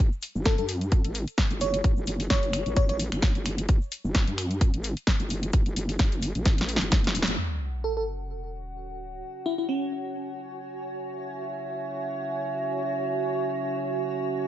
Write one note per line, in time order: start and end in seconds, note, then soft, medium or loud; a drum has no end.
0.00 0.10 F#1 medium
0.12 shaker soft
0.22 open hi-hat loud
0.22 shaker medium
0.35 0.56 F#1 loud
0.35 shaker soft
0.45 0.54 A4 medium
0.45 kick loud
0.45 snare loud
0.45 closed hi-hat medium
0.45 shaker medium
0.58 1.02 F#2 medium
0.58 0.65 A4 medium
0.58 closed hi-hat soft
0.58 shaker soft
0.68 open hi-hat loud
0.68 shaker medium
0.81 closed hi-hat soft
0.81 shaker soft
0.92 kick loud
0.92 closed hi-hat medium
0.92 shaker soft
1.04 1.25 G#1 loud
1.04 closed hi-hat soft
1.04 shaker soft
1.15 open hi-hat loud
1.15 shaker medium
1.27 closed hi-hat soft
1.27 shaker soft
1.38 kick loud
1.38 snare loud
1.38 closed hi-hat medium
1.38 shaker medium
1.50 1.82 F#1 loud
1.50 closed hi-hat soft
1.50 shaker soft
1.61 1.79 C#5 medium
1.61 open hi-hat loud
1.61 shaker medium
1.74 closed hi-hat medium
1.74 shaker soft
1.84 1.95 F#1 loud
1.84 kick loud
1.84 closed hi-hat medium
1.84 shaker soft
1.97 2.06 F#1 medium
1.97 shaker soft
2.07 2.29 F#1 medium
2.07 open hi-hat loud
2.07 shaker medium
2.20 open hi-hat medium
2.20 shaker soft
2.30 2.64 F#1 medium
2.30 2.74 C#5 medium
2.30 kick loud
2.30 snare loud
2.30 closed hi-hat medium
2.30 shaker soft
2.43 closed hi-hat soft
2.43 shaker soft
2.53 finger snap medium
2.53 open hi-hat loud
2.53 shaker medium
2.66 3.10 A1 medium
2.66 closed hi-hat soft
2.66 shaker soft
2.76 2.85 C#5 medium
2.76 kick loud
2.76 closed hi-hat medium
2.76 shaker soft
2.89 2.96 C#5 medium
2.89 closed hi-hat medium
2.89 shaker soft
2.99 open hi-hat loud
2.99 shaker medium
3.12 3.33 F#1 medium
3.12 finger snap medium
3.12 closed hi-hat soft
3.12 shaker soft
3.22 kick loud
3.22 snare loud
3.22 closed hi-hat medium
3.22 shaker medium
3.35 3.67 F#1 loud
3.35 closed hi-hat soft
3.35 shaker soft
3.46 finger snap medium
3.46 open hi-hat loud
3.46 shaker medium
3.58 closed hi-hat medium
3.58 shaker soft
3.69 3.79 F#1 loud
3.69 kick loud
3.69 closed hi-hat medium
3.69 shaker soft
3.82 shaker soft
3.92 open hi-hat loud
3.92 shaker medium
4.04 4.25 F#1 loud
4.04 shaker soft
4.15 kick loud
4.15 snare loud
4.15 closed hi-hat medium
4.15 shaker soft
4.27 4.72 F#2 loud
4.27 closed hi-hat soft
4.27 shaker soft
4.38 finger snap medium
4.38 open hi-hat loud
4.38 shaker medium
4.50 closed hi-hat soft
4.50 shaker soft
4.61 kick loud
4.61 closed hi-hat medium
4.61 shaker medium
4.73 4.95 G#1 loud
4.73 closed hi-hat medium
4.73 shaker soft
4.84 open hi-hat loud
4.84 shaker medium
4.97 closed hi-hat soft
4.97 shaker soft
5.07 kick loud
5.07 snare loud
5.07 closed hi-hat medium
5.07 shaker soft
5.19 5.52 F#1 medium
5.19 closed hi-hat soft
5.19 shaker soft
5.30 open hi-hat loud
5.30 shaker medium
5.43 closed hi-hat medium
5.43 shaker soft
5.53 5.64 F#1 loud
5.53 kick loud
5.53 closed hi-hat medium
5.53 shaker medium
5.66 5.75 F#1 loud
5.66 closed hi-hat soft
5.66 shaker soft
5.76 5.98 F#1 loud
5.76 open hi-hat loud
5.76 shaker medium
5.89 open hi-hat medium
5.89 shaker soft
5.99 6.33 F#1 medium
5.99 kick loud
5.99 snare loud
5.99 closed hi-hat medium
5.99 shaker soft
6.12 closed hi-hat soft
6.12 shaker soft
6.22 open hi-hat loud
6.22 shaker medium
6.35 6.79 A1 medium
6.35 closed hi-hat soft
6.35 shaker soft
6.45 kick loud
6.45 snare medium
6.45 closed hi-hat medium
6.45 shaker soft
6.58 snare medium
6.58 closed hi-hat medium
6.58 shaker soft
6.68 open hi-hat loud
6.68 shaker medium
6.76 snare medium
6.81 7.25 F#1 medium
6.81 closed hi-hat soft
6.81 shaker soft
6.91 kick loud
6.91 snare medium
6.91 closed hi-hat medium
6.91 shaker medium
7.04 snare medium
7.04 closed hi-hat soft
7.04 shaker soft
7.15 open hi-hat loud
7.15 shaker medium
7.22 snare loud
7.27 7.36 F#1 medium
7.27 closed hi-hat medium
7.27 shaker soft
7.38 14.47 C#4 medium
7.38 14.47 F#4 medium
7.38 11.06 F#5 medium
7.38 sub drop medium
7.84 7.92 A4 medium
7.95 8.03 A4 medium
7.95 14.47 C#5 medium
8.68 14.47 G#5 medium
9.46 9.54 E4 medium
9.58 9.65 E4 medium
9.69 10.34 C#4 medium
11.07 14.47 E5 medium